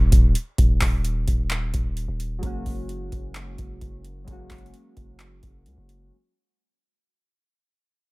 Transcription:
Already playing: D#1
0.12 D#1, kick, closed hi-hat
0.35 closed hi-hat
0.58 D#1, kick, closed hi-hat
0.81 D#1, kick, clap, open hi-hat
1.05 closed hi-hat
1.28 D#1, kick, closed hi-hat
1.51 clap, closed hi-hat
1.74 D#1, kick, closed hi-hat
1.97 closed hi-hat
2.08 D#1
2.20 closed hi-hat
2.38 F#3 G#3 A#3
2.43 F#1 C#4 F#4, kick, closed hi-hat
2.66 F#1, kick, open hi-hat
2.89 closed hi-hat
3.12 F#1, kick, closed hi-hat
3.35 clap, closed hi-hat
3.58 F#1, kick, closed hi-hat
3.81 F#1, kick, closed hi-hat
4.05 closed hi-hat
4.24 F#1 F#3 G#3 A#3, kick, closed hi-hat
4.30 C#4 F#4
4.51 F#1, kick, clap, closed hi-hat, open hi-hat
4.58 closed hi-hat
4.66 closed hi-hat
4.74 closed hi-hat
4.97 F#1, kick, closed hi-hat
5.20 clap, closed hi-hat
5.43 F#1, kick, closed hi-hat
5.66 C#2, closed hi-hat
5.78 F#1
5.89 closed hi-hat

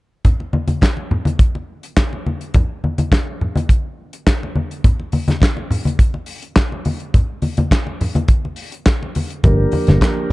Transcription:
0.25 kick, closed hi-hat, low conga
0.40 muted conga
0.53 high conga
0.68 closed hi-hat, high conga
0.81 kick, snare, clap, closed hi-hat, muted conga
0.97 muted conga
1.11 low conga
1.25 closed hi-hat, high conga
1.39 kick, closed hi-hat, muted conga
1.55 muted conga
1.83 closed hi-hat
1.97 kick, snare, clap, closed hi-hat, muted conga
2.13 muted conga
2.26 high conga
2.41 closed hi-hat
2.54 kick, closed hi-hat, muted conga, low conga
2.84 high conga
2.98 closed hi-hat, high conga
3.12 kick, snare, clap, closed hi-hat, muted conga
3.41 low conga
3.56 closed hi-hat, high conga
3.69 kick, closed hi-hat, muted conga
4.13 closed hi-hat
4.27 kick, snare, clap, closed hi-hat
4.43 muted conga
4.55 high conga
4.71 closed hi-hat
4.84 kick, closed hi-hat, low conga
5.00 muted conga
5.12 open hi-hat, high conga
5.28 snare, closed hi-hat, high conga
5.40 kick, snare, clap, closed hi-hat, muted conga
5.57 muted conga
5.71 open hi-hat, low conga
5.85 closed hi-hat, high conga
5.99 kick, closed hi-hat, muted conga
6.14 muted conga
6.26 open hi-hat
6.42 closed hi-hat
6.56 kick, snare, clap, closed hi-hat
6.72 muted conga
6.85 open hi-hat, high conga
7.00 closed hi-hat
7.14 kick, closed hi-hat, muted conga, low conga
7.42 open hi-hat, high conga
7.57 closed hi-hat, high conga
7.71 kick, snare, clap, closed hi-hat, muted conga
7.87 muted conga
8.01 open hi-hat, low conga
8.15 closed hi-hat, high conga
8.28 kick, closed hi-hat
8.45 muted conga
8.56 open hi-hat
8.72 closed hi-hat
8.86 kick, snare, clap, closed hi-hat
9.03 muted conga
9.15 open hi-hat, high conga
9.30 closed hi-hat
9.44 G1 F3 A#3 D4 G4 A#4, kick, closed hi-hat, low conga
9.72 open hi-hat, high conga
9.87 G1, snare, closed hi-hat, high conga
10.01 kick, snare, clap, closed hi-hat, muted conga

